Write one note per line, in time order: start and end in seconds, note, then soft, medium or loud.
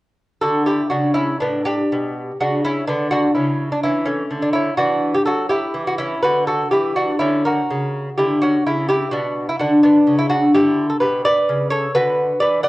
0.41 0.80 D3 medium
0.41 0.64 F#4 medium
0.41 0.64 A4 medium
0.66 0.89 E4 medium
0.66 0.89 G4 medium
0.90 1.31 C#3 soft
0.90 1.13 D4 medium
0.90 1.13 F#4 medium
1.14 1.39 C#4 medium
1.14 1.39 E4 medium
1.40 1.82 A2 medium
1.40 1.65 B3 medium
1.40 1.64 D4 medium
1.65 2.36 D4 medium
1.65 2.36 G4 medium
1.92 2.31 B2 medium
2.40 2.79 C#3 medium
2.40 2.63 D4 medium
2.40 2.63 F#4 medium
2.65 2.87 C#4 medium
2.65 2.87 E4 medium
2.88 3.26 D3 medium
2.88 3.11 B3 medium
2.88 3.10 D4 medium
3.11 3.34 D4 medium
3.11 3.34 F#4 medium
3.35 3.74 C#3 medium
3.35 3.69 C#4 medium
3.35 3.70 E4 medium
3.72 3.83 D4 medium
3.83 4.22 E3 medium
3.83 4.04 C#4 medium
3.83 4.06 E4 medium
4.06 4.40 A3 medium
4.06 4.41 C#4 medium
4.31 4.69 D3 medium
4.42 4.53 D4 medium
4.53 4.77 C#4 medium
4.53 4.77 E4 medium
4.77 5.17 E3 medium
4.77 5.12 D4 medium
4.77 5.12 F#4 medium
5.14 5.25 G4 medium
5.25 5.65 F#3 medium
5.25 5.49 F#4 medium
5.25 5.49 A4 medium
5.49 5.84 E4 medium
5.49 5.85 G4 medium
5.74 6.13 E3 medium
5.87 5.98 F#4 medium
5.98 6.22 C#4 medium
5.98 6.22 E4 medium
6.22 6.62 D3 medium
6.22 6.46 F#4 medium
6.22 6.46 B4 medium
6.47 6.70 F#4 medium
6.47 6.70 A4 medium
6.71 7.11 E3 medium
6.71 6.95 E4 medium
6.71 6.94 G4 medium
6.96 7.19 D4 medium
6.96 7.19 F#4 medium
7.19 7.60 D3 medium
7.19 7.44 C#4 medium
7.19 7.44 E4 medium
7.45 8.14 F#4 medium
7.45 8.15 A#4 medium
7.70 8.09 C#3 medium
8.17 8.56 D3 medium
8.17 8.40 E4 medium
8.17 8.40 G4 medium
8.42 8.64 C#4 medium
8.42 8.64 F#4 medium
8.67 9.04 C#3 medium
8.67 8.88 C#4 medium
8.67 8.88 E4 medium
8.89 9.11 E4 medium
8.89 9.12 G4 medium
9.11 9.50 B2 medium
9.11 9.46 D4 medium
9.11 9.46 F#4 medium
9.49 9.59 E4 medium
9.59 9.97 D3 medium
9.59 9.82 D4 medium
9.59 9.82 F#4 medium
9.83 10.16 B3 medium
9.83 10.17 D4 medium
10.07 10.44 C#3 medium
10.19 10.29 E4 medium
10.30 10.52 D4 medium
10.30 10.52 F#4 medium
10.54 10.92 D3 medium
10.54 10.87 E4 medium
10.54 10.88 G4 medium
10.90 11.00 A4 medium
11.00 11.38 B2 medium
11.00 11.23 G4 medium
11.00 11.23 B4 medium
11.25 11.69 B4 medium
11.25 11.70 D5 loud
11.49 11.86 C#3 medium
11.70 11.93 A4 medium
11.70 11.93 C#5 loud
11.95 12.32 D3 medium
11.95 12.38 F#4 medium
11.95 12.39 B4 medium
12.40 12.69 E3 medium
12.40 12.63 B4 medium
12.40 12.63 D5 loud
12.63 12.69 D5 medium
12.63 12.69 F#5 loud